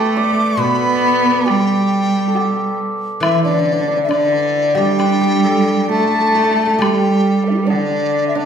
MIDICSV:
0, 0, Header, 1, 6, 480
1, 0, Start_track
1, 0, Tempo, 875912
1, 1768, Time_signature, 4, 2, 24, 8
1, 2252, Tempo, 894188
1, 4584, End_track
2, 0, Start_track
2, 0, Title_t, "Dizi"
2, 0, Program_c, 0, 73
2, 0, Note_on_c, 0, 79, 84
2, 91, Note_on_c, 0, 86, 88
2, 99, Note_off_c, 0, 79, 0
2, 330, Note_on_c, 0, 83, 93
2, 338, Note_off_c, 0, 86, 0
2, 805, Note_on_c, 0, 79, 83
2, 813, Note_off_c, 0, 83, 0
2, 1526, Note_off_c, 0, 79, 0
2, 1761, Note_on_c, 0, 76, 81
2, 1877, Note_off_c, 0, 76, 0
2, 1884, Note_on_c, 0, 74, 77
2, 2188, Note_off_c, 0, 74, 0
2, 2212, Note_on_c, 0, 76, 54
2, 2244, Note_on_c, 0, 74, 81
2, 2253, Note_off_c, 0, 76, 0
2, 2595, Note_on_c, 0, 79, 89
2, 2603, Note_off_c, 0, 74, 0
2, 3210, Note_off_c, 0, 79, 0
2, 3217, Note_on_c, 0, 81, 86
2, 3703, Note_on_c, 0, 79, 79
2, 3711, Note_off_c, 0, 81, 0
2, 4031, Note_off_c, 0, 79, 0
2, 4031, Note_on_c, 0, 79, 54
2, 4039, Note_on_c, 0, 69, 31
2, 4042, Note_off_c, 0, 79, 0
2, 4056, Note_on_c, 0, 76, 70
2, 4064, Note_off_c, 0, 69, 0
2, 4067, Note_off_c, 0, 76, 0
2, 4078, Note_on_c, 0, 62, 35
2, 4091, Note_off_c, 0, 62, 0
2, 4095, Note_on_c, 0, 64, 40
2, 4113, Note_off_c, 0, 64, 0
2, 4116, Note_on_c, 0, 67, 43
2, 4127, Note_off_c, 0, 67, 0
2, 4128, Note_on_c, 0, 69, 44
2, 4147, Note_off_c, 0, 69, 0
2, 4150, Note_on_c, 0, 71, 48
2, 4170, Note_on_c, 0, 74, 78
2, 4178, Note_off_c, 0, 71, 0
2, 4486, Note_off_c, 0, 74, 0
2, 4489, Note_on_c, 0, 76, 53
2, 4533, Note_on_c, 0, 74, 73
2, 4541, Note_off_c, 0, 76, 0
2, 4584, Note_off_c, 0, 74, 0
2, 4584, End_track
3, 0, Start_track
3, 0, Title_t, "Hammered dulcimer"
3, 0, Program_c, 1, 15
3, 0, Note_on_c, 1, 67, 66
3, 0, Note_on_c, 1, 69, 80
3, 0, Note_on_c, 1, 71, 78
3, 91, Note_on_c, 1, 74, 74
3, 325, Note_off_c, 1, 71, 0
3, 327, Note_on_c, 1, 71, 70
3, 798, Note_off_c, 1, 67, 0
3, 800, Note_on_c, 1, 67, 71
3, 1245, Note_off_c, 1, 69, 0
3, 1248, Note_on_c, 1, 69, 44
3, 1285, Note_off_c, 1, 67, 0
3, 1287, Note_on_c, 1, 67, 59
3, 1439, Note_off_c, 1, 74, 0
3, 1767, Note_on_c, 1, 64, 72
3, 1820, Note_off_c, 1, 71, 0
3, 1889, Note_on_c, 1, 62, 55
3, 1921, Note_off_c, 1, 62, 0
3, 1923, Note_on_c, 1, 62, 46
3, 1963, Note_off_c, 1, 62, 0
3, 1965, Note_on_c, 1, 62, 46
3, 2000, Note_off_c, 1, 62, 0
3, 2003, Note_on_c, 1, 62, 43
3, 2039, Note_off_c, 1, 62, 0
3, 2041, Note_on_c, 1, 62, 49
3, 2080, Note_off_c, 1, 62, 0
3, 2082, Note_on_c, 1, 62, 43
3, 2122, Note_off_c, 1, 62, 0
3, 2124, Note_on_c, 1, 62, 49
3, 2171, Note_off_c, 1, 62, 0
3, 2173, Note_on_c, 1, 62, 46
3, 2237, Note_off_c, 1, 62, 0
3, 2239, Note_on_c, 1, 62, 64
3, 2606, Note_off_c, 1, 67, 0
3, 2608, Note_on_c, 1, 67, 70
3, 2838, Note_off_c, 1, 69, 0
3, 3207, Note_on_c, 1, 69, 66
3, 3255, Note_off_c, 1, 69, 0
3, 3257, Note_on_c, 1, 69, 45
3, 3295, Note_off_c, 1, 69, 0
3, 3297, Note_on_c, 1, 69, 48
3, 3334, Note_off_c, 1, 69, 0
3, 3336, Note_on_c, 1, 69, 44
3, 3377, Note_off_c, 1, 69, 0
3, 3379, Note_on_c, 1, 69, 41
3, 3421, Note_off_c, 1, 69, 0
3, 3424, Note_on_c, 1, 69, 38
3, 3453, Note_off_c, 1, 69, 0
3, 3455, Note_on_c, 1, 69, 46
3, 3501, Note_off_c, 1, 69, 0
3, 3503, Note_on_c, 1, 69, 42
3, 3539, Note_off_c, 1, 69, 0
3, 3541, Note_on_c, 1, 69, 47
3, 3580, Note_off_c, 1, 69, 0
3, 3582, Note_on_c, 1, 69, 39
3, 3615, Note_off_c, 1, 69, 0
3, 3617, Note_on_c, 1, 69, 52
3, 3643, Note_off_c, 1, 64, 0
3, 3686, Note_off_c, 1, 67, 0
3, 3689, Note_on_c, 1, 67, 67
3, 4159, Note_off_c, 1, 62, 0
3, 4161, Note_on_c, 1, 62, 61
3, 4528, Note_off_c, 1, 62, 0
3, 4530, Note_on_c, 1, 62, 73
3, 4584, Note_off_c, 1, 62, 0
3, 4584, Note_off_c, 1, 67, 0
3, 4584, Note_off_c, 1, 69, 0
3, 4584, End_track
4, 0, Start_track
4, 0, Title_t, "Guzheng"
4, 0, Program_c, 2, 107
4, 0, Note_on_c, 2, 47, 61
4, 0, Note_on_c, 2, 59, 46
4, 0, Note_on_c, 2, 62, 40
4, 0, Note_on_c, 2, 67, 47
4, 91, Note_off_c, 2, 59, 0
4, 207, Note_off_c, 2, 62, 0
4, 307, Note_off_c, 2, 47, 0
4, 314, Note_on_c, 2, 47, 65
4, 325, Note_off_c, 2, 67, 0
4, 1755, Note_on_c, 2, 52, 56
4, 1761, Note_off_c, 2, 47, 0
4, 2595, Note_on_c, 2, 55, 57
4, 2724, Note_on_c, 2, 62, 43
4, 2843, Note_on_c, 2, 67, 44
4, 2968, Note_on_c, 2, 69, 41
4, 3092, Note_on_c, 2, 74, 37
4, 3209, Note_off_c, 2, 52, 0
4, 3681, Note_off_c, 2, 55, 0
4, 3688, Note_on_c, 2, 55, 47
4, 3702, Note_off_c, 2, 62, 0
4, 3820, Note_off_c, 2, 67, 0
4, 3940, Note_off_c, 2, 69, 0
4, 4058, Note_off_c, 2, 74, 0
4, 4584, Note_off_c, 2, 55, 0
4, 4584, End_track
5, 0, Start_track
5, 0, Title_t, "Cello"
5, 0, Program_c, 3, 42
5, 0, Note_on_c, 3, 57, 79
5, 306, Note_off_c, 3, 57, 0
5, 333, Note_on_c, 3, 59, 99
5, 819, Note_on_c, 3, 55, 75
5, 827, Note_off_c, 3, 59, 0
5, 1533, Note_off_c, 3, 55, 0
5, 1781, Note_on_c, 3, 52, 62
5, 1887, Note_off_c, 3, 52, 0
5, 1903, Note_on_c, 3, 50, 62
5, 2236, Note_off_c, 3, 50, 0
5, 2263, Note_on_c, 3, 50, 77
5, 2619, Note_on_c, 3, 55, 76
5, 2627, Note_off_c, 3, 50, 0
5, 3208, Note_off_c, 3, 55, 0
5, 3212, Note_on_c, 3, 57, 77
5, 3704, Note_on_c, 3, 55, 68
5, 3712, Note_off_c, 3, 57, 0
5, 4179, Note_on_c, 3, 50, 75
5, 4187, Note_off_c, 3, 55, 0
5, 4584, Note_off_c, 3, 50, 0
5, 4584, End_track
6, 0, Start_track
6, 0, Title_t, "Drums"
6, 810, Note_on_c, 9, 76, 42
6, 865, Note_off_c, 9, 76, 0
6, 1293, Note_on_c, 9, 77, 44
6, 1348, Note_off_c, 9, 77, 0
6, 1769, Note_on_c, 9, 76, 64
6, 1824, Note_off_c, 9, 76, 0
6, 2251, Note_on_c, 9, 76, 42
6, 2305, Note_off_c, 9, 76, 0
6, 2729, Note_on_c, 9, 76, 46
6, 2782, Note_off_c, 9, 76, 0
6, 3707, Note_on_c, 9, 76, 58
6, 3760, Note_off_c, 9, 76, 0
6, 4181, Note_on_c, 9, 77, 43
6, 4235, Note_off_c, 9, 77, 0
6, 4584, End_track
0, 0, End_of_file